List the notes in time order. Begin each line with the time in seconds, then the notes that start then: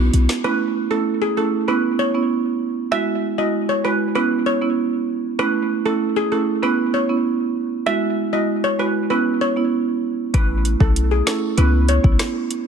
Already playing: B1 B3 D#4 F#4
0.14 B1, closed hi-hat
0.29 snare
0.44 A3 C#4 E4 B4
0.91 A3 C#4 E4 A4
1.22 G#4
1.37 A3 C#4 E4 A4
1.68 B3 C#4 E4 B4
1.99 C#5
2.14 B3 C#4 E4
2.92 G#3 E4 F#4 E5
3.38 G#3 E4 F#4 D#5
3.69 C#5
3.84 G#3 E4 F#4 B4
4.15 B3 C#4 E4 B4
4.46 C#5
4.61 B3 C#4 E4
5.39 A3 C#4 E4 B4
5.85 A3 C#4 E4 A4
6.16 G#4
6.32 A3 C#4 E4 A4
6.63 B3 C#4 E4 B4
6.94 C#5
7.09 B3 C#4 E4
7.86 G#3 E4 F#4 E5
8.33 G#3 E4 F#4 D#5
8.64 C#5
8.79 G#3 E4 F#4 B4
9.10 B3 C#4 E4 B4
9.41 C#5
9.56 B3 C#4 E4
10.34 A1 A3 C#4 E4 B4, kick, closed hi-hat
10.65 closed hi-hat
10.80 B1 A3 C#4 E4 A4, kick
10.96 closed hi-hat
11.11 G#4
11.26 A3 C#4 E4 A4, snare, closed hi-hat
11.57 C#2 B3 C#4 E4 B4, closed hi-hat
11.89 C#5, closed hi-hat
12.04 B1 B3 C#4 E4, kick
12.19 cross-stick, snare, closed hi-hat
12.51 closed hi-hat